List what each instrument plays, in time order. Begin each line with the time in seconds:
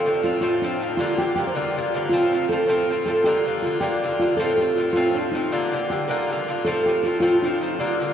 0.05 bouzouki A2 F3 C4 F4, nylon-string guitar G4
0.24 bouzouki A2 F3 C4 F4, nylon-string guitar F4
0.41 bouzouki A2 F3 C4 F4, nylon-string guitar F4
0.62 bouzouki A2 F3 C4 F4, nylon-string guitar D4
0.79 bouzouki A2 F3 C4, nylon-string guitar D#4
0.83 bouzouki F4
0.97 bouzouki G2 D3 A#3 F4, nylon-string guitar F4
1.18 bouzouki G2 D3 A#3 F4, nylon-string guitar G4
1.35 bouzouki G2 D3 A#3, nylon-string guitar G4
1.40 bouzouki F4
1.47 nylon-string guitar C5
1.53 bouzouki G2 D3 A#3 F4, nylon-string guitar A#4
1.77 bouzouki G2 D3 A#3 F4
1.94 bouzouki G2 D3 A#3 F4
2.09 bouzouki A2 F3, nylon-string guitar F4
2.14 bouzouki C4 F4
2.33 bouzouki A2 F3 C4 F4
2.49 bouzouki A2 F3 C4, nylon-string guitar A4
2.53 bouzouki F4
2.67 bouzouki A2 F3 C4 F4, nylon-string guitar C5
2.88 bouzouki A2 F3 C4, nylon-string guitar A#4
2.92 bouzouki F4
3.06 bouzouki A2 F3 C4 F4, nylon-string guitar A4
3.24 bouzouki G2 D3 A#3 F4, nylon-string guitar G4
3.46 bouzouki G2 D3 A#3 F4
3.62 bouzouki G2 D3 A#3, nylon-string guitar F4
3.66 bouzouki F4
3.80 bouzouki G2 D3 A#3 F4, nylon-string guitar G4
4.03 bouzouki G2 D3 A#3 F4
4.19 bouzouki G2 D3 A#3, nylon-string guitar F4
4.24 bouzouki F4
4.37 bouzouki A2 F3 C4 F4, nylon-string guitar A4
4.57 bouzouki A2 F3, nylon-string guitar G4
4.61 bouzouki C4 F4
4.75 bouzouki A2 F3 C4, nylon-string guitar F4
4.80 bouzouki F4
4.93 bouzouki A2 F3 C4, nylon-string guitar F4
4.97 bouzouki F4
5.14 bouzouki A2 F3 C4 F4, nylon-string guitar D4
5.31 bouzouki A2 F3, nylon-string guitar D#4
5.36 bouzouki C4 F4
5.50 bouzouki G2 D3 A#3 F4, nylon-string guitar F4
5.72 bouzouki G2 D3 A#3 F4, nylon-string guitar G4
5.90 bouzouki G2 D3 A#3 F4, nylon-string guitar G4
6.08 bouzouki G2 D3 A#3 F4, nylon-string guitar A#4
6.30 bouzouki G2 D3 A#3 F4
6.48 bouzouki G2 D3 A#3 F4
6.64 bouzouki A2 F3 C4 F4, nylon-string guitar A4
6.86 bouzouki A2 F3 C4, nylon-string guitar G4
6.90 bouzouki F4
7.03 bouzouki A2 F3 C4, nylon-string guitar F4
7.07 bouzouki F4
7.20 bouzouki A2 F3 C4 F4, nylon-string guitar F4
7.42 bouzouki A2 F3 C4, nylon-string guitar D4
7.46 bouzouki F4
7.60 bouzouki A2 F3 C4 F4, nylon-string guitar D#4
7.79 bouzouki G2 D3 A#3 F4, nylon-string guitar F4
8.00 bouzouki G2 D3 A#3 F4